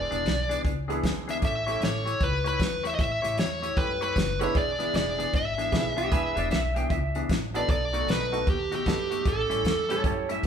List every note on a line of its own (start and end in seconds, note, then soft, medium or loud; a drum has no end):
0.00 0.22 G#3 medium
0.00 0.22 B3 medium
0.00 0.22 D4 medium
0.00 0.22 E4 medium
0.00 0.23 G#4 medium
0.00 0.61 D5 medium
0.11 0.24 E1 medium
0.11 0.33 E3 medium
0.11 0.33 B3 medium
0.11 0.33 D4 medium
0.11 0.33 G#4 medium
0.11 closed hi-hat medium
0.25 0.59 B1 medium
0.25 snare medium
0.25 closed hi-hat medium
0.49 0.72 E3 medium
0.49 0.72 B3 medium
0.49 0.72 D4 medium
0.49 0.71 G#4 medium
0.49 closed hi-hat medium
0.65 0.98 C#2 medium
0.65 kick medium
0.65 closed hi-hat medium
0.88 1.11 E3 medium
0.88 1.40 G#3 medium
0.88 1.11 B3 medium
0.88 1.40 B3 medium
0.88 1.11 D4 medium
0.88 1.40 D4 medium
0.88 1.40 E4 medium
0.88 1.10 G#4 medium
0.88 1.40 G#4 medium
0.88 closed hi-hat soft
1.03 1.37 D2 medium
1.03 kick medium
1.03 snare loud
1.03 closed hi-hat medium
1.28 1.43 E3 medium
1.28 1.42 B3 medium
1.28 1.42 D4 medium
1.28 1.42 G#4 medium
1.28 1.36 E5 medium
1.28 closed hi-hat medium
1.42 1.76 A1 medium
1.42 1.57 C#4 medium
1.42 1.57 G4 medium
1.42 1.57 A4 medium
1.42 1.84 E5 loud
1.42 kick loud
1.42 closed hi-hat medium
1.66 1.89 A3 medium
1.66 2.12 C#4 medium
1.66 1.89 E4 medium
1.66 1.89 G4 medium
1.66 2.12 G4 medium
1.66 2.12 A4 medium
1.66 1.88 C#5 medium
1.66 closed hi-hat medium
1.81 2.15 A1 medium
1.81 2.23 C#5 medium
1.81 snare medium
1.81 closed hi-hat medium
2.05 2.28 A3 medium
2.05 2.28 E4 medium
2.05 2.28 G4 medium
2.05 2.27 C#5 medium
2.05 closed hi-hat medium
2.21 2.55 C#2 medium
2.21 2.47 B4 medium
2.21 kick loud
2.21 closed hi-hat medium
2.44 2.67 A3 medium
2.44 2.67 E4 medium
2.44 2.67 G4 medium
2.44 2.83 B4 medium
2.44 2.66 C#5 medium
2.44 closed hi-hat soft
2.60 2.94 E2 medium
2.60 kick medium
2.60 snare loud
2.60 closed hi-hat medium
2.83 3.06 A3 medium
2.83 3.06 E4 medium
2.83 3.06 G4 medium
2.83 3.06 C#5 medium
2.83 2.94 E5 medium
2.83 closed hi-hat medium
2.95 3.20 A1 medium
2.95 2.99 D#5 medium
2.99 3.39 E5 loud
2.99 kick loud
2.99 closed hi-hat medium
3.22 3.36 A1 medium
3.22 3.45 A3 medium
3.22 3.45 E4 medium
3.22 3.45 G4 medium
3.22 3.44 C#5 medium
3.22 closed hi-hat medium
3.37 3.71 E2 medium
3.37 3.79 C#5 medium
3.37 snare loud
3.37 closed hi-hat medium
3.62 3.85 A3 medium
3.62 3.84 E4 medium
3.62 3.84 G4 medium
3.62 3.84 C#5 medium
3.62 closed hi-hat medium
3.77 4.11 F#2 medium
3.77 3.99 G3 medium
3.77 3.99 A3 medium
3.77 3.99 C#4 soft
3.77 3.99 E4 soft
3.77 4.00 G4 medium
3.77 4.02 B4 medium
3.77 kick loud
3.77 snare soft
3.77 closed hi-hat medium
4.01 4.23 A3 medium
4.01 4.23 E4 medium
4.01 4.23 G4 medium
4.01 4.39 B4 medium
4.01 4.23 C#5 medium
4.01 closed hi-hat medium
4.16 4.50 F#1 medium
4.16 kick medium
4.16 snare loud
4.16 closed hi-hat medium
4.39 4.53 G#3 medium
4.39 4.55 A3 medium
4.39 4.53 B3 medium
4.39 4.54 D4 medium
4.39 4.54 E4 medium
4.39 4.54 G4 medium
4.39 4.54 B4 medium
4.39 4.54 C#5 medium
4.39 4.56 C#5 medium
4.39 closed hi-hat medium
4.54 4.89 E1 medium
4.54 4.70 D4 medium
4.54 4.70 E4 medium
4.54 4.70 G#4 medium
4.54 4.95 D5 loud
4.54 kick loud
4.54 closed hi-hat medium
4.79 5.01 E3 medium
4.79 5.01 B3 medium
4.79 5.24 D4 medium
4.79 5.01 D4 medium
4.79 5.24 E4 medium
4.79 5.01 G#4 medium
4.79 5.24 G#4 medium
4.79 closed hi-hat medium
4.94 5.28 E1 medium
4.94 5.35 D5 medium
4.94 snare loud
4.94 closed hi-hat medium
5.19 5.41 E3 medium
5.19 5.41 B3 medium
5.19 5.40 D4 medium
5.19 5.40 G#4 medium
5.19 closed hi-hat medium
5.33 5.67 G#1 medium
5.33 7.26 E5 loud
5.33 kick loud
5.33 closed hi-hat medium
5.58 5.80 E3 medium
5.58 5.80 B3 medium
5.58 5.80 D4 medium
5.58 5.80 G#4 medium
5.58 closed hi-hat medium
5.72 6.06 B1 medium
5.72 5.95 G#3 medium
5.72 5.95 B3 medium
5.72 5.95 D4 medium
5.72 5.95 E4 medium
5.72 5.95 G#4 medium
5.72 kick medium
5.72 snare loud
5.72 closed hi-hat medium
5.96 6.19 E3 medium
5.96 6.19 B3 medium
5.96 6.19 D4 medium
5.96 6.11 G4 medium
5.96 6.18 G#4 medium
5.96 closed hi-hat medium
6.11 6.33 E1 medium
6.11 6.34 G#3 medium
6.11 6.34 B3 medium
6.11 6.34 D4 medium
6.11 6.34 E4 medium
6.11 6.34 G#4 medium
6.11 6.36 B4 medium
6.11 kick loud
6.11 closed hi-hat medium
6.36 6.49 E1 medium
6.36 6.59 E3 medium
6.36 6.58 B3 medium
6.36 6.58 D4 medium
6.36 6.58 G#4 medium
6.36 6.51 D5 medium
6.36 closed hi-hat medium
6.51 6.85 B1 medium
6.51 6.76 E5 medium
6.51 snare loud
6.51 closed hi-hat medium
6.76 6.98 E3 medium
6.76 6.98 B3 medium
6.76 6.98 D4 medium
6.76 6.97 G#4 medium
6.76 6.90 G5 medium
6.76 closed hi-hat medium
6.90 7.24 C#2 medium
6.90 7.29 E5 medium
6.90 kick loud
6.90 closed hi-hat medium
7.15 7.37 E3 medium
7.15 7.37 B3 medium
7.15 7.37 D4 medium
7.15 7.37 G#4 medium
7.15 closed hi-hat medium
7.29 7.63 A1 medium
7.29 kick medium
7.29 snare loud
7.29 closed hi-hat medium
7.54 7.69 E3 medium
7.54 7.67 A3 medium
7.54 7.67 B3 medium
7.54 7.69 B3 medium
7.54 7.69 D4 medium
7.54 7.67 D#4 medium
7.54 7.67 F#4 medium
7.54 7.69 G#4 medium
7.54 7.67 A4 medium
7.54 7.69 D5 medium
7.54 closed hi-hat medium
7.68 8.03 B1 medium
7.68 7.83 B3 medium
7.68 7.83 D#4 medium
7.68 7.83 A4 medium
7.68 8.10 D5 loud
7.68 kick loud
7.68 closed hi-hat medium
7.93 8.16 B2 medium
7.93 8.15 A3 medium
7.93 8.38 B3 medium
7.93 8.38 D#4 medium
7.93 8.15 D#4 medium
7.93 8.15 F#4 medium
7.93 8.38 A4 medium
7.93 closed hi-hat medium
8.07 8.41 B1 medium
8.07 8.49 B4 medium
8.07 snare medium
8.07 closed hi-hat medium
8.32 8.55 B2 medium
8.32 8.45 A3 medium
8.32 8.55 A3 medium
8.32 8.45 B3 medium
8.32 8.45 D#4 medium
8.32 8.55 D#4 medium
8.32 8.45 F#4 medium
8.32 8.54 F#4 medium
8.32 8.45 A4 medium
8.32 closed hi-hat medium
8.47 8.81 D#2 medium
8.47 8.74 G4 medium
8.47 kick medium
8.47 closed hi-hat medium
8.72 8.94 B2 medium
8.72 8.94 A3 medium
8.72 8.94 D#4 medium
8.72 8.93 F#4 medium
8.72 9.28 G4 medium
8.72 closed hi-hat medium
8.86 9.20 F#2 medium
8.86 9.09 A3 medium
8.86 9.09 B3 medium
8.86 9.09 D#4 medium
8.86 9.09 F#4 medium
8.86 9.09 A4 medium
8.86 kick medium
8.86 snare loud
8.86 closed hi-hat medium
9.11 9.26 B2 medium
9.11 9.25 A3 medium
9.11 9.25 D#4 medium
9.11 9.25 F#4 medium
9.11 closed hi-hat medium
9.25 9.47 A1 medium
9.25 9.92 C#4 medium
9.25 9.92 G4 medium
9.25 9.92 A4 loud
9.25 10.01 A4 medium
9.25 kick loud
9.25 closed hi-hat medium
9.50 9.62 A1 medium
9.50 9.72 A2 medium
9.50 9.72 G3 medium
9.50 9.72 C#4 medium
9.50 9.72 E4 medium
9.50 closed hi-hat medium
9.64 9.98 E2 medium
9.64 snare loud
9.64 closed hi-hat medium
9.89 10.11 A2 medium
9.89 10.11 G3 medium
9.89 10.11 C#4 medium
9.89 10.11 E4 medium
9.89 10.04 A4 medium
9.89 10.04 C#5 medium
9.89 closed hi-hat medium
10.04 10.38 F#2 medium
10.04 10.27 A3 medium
10.04 10.27 C#4 medium
10.04 10.27 E4 soft
10.04 10.27 G4 medium
10.04 10.27 A4 medium
10.04 10.28 A4 medium
10.04 10.30 C#5 loud
10.04 kick medium
10.04 closed hi-hat medium
10.29 10.47 A2 medium
10.29 10.47 G3 medium
10.29 10.47 C#4 medium
10.29 10.47 E4 medium
10.29 10.44 E5 medium
10.29 closed hi-hat medium
10.43 10.47 G2 medium
10.43 kick medium
10.43 closed hi-hat medium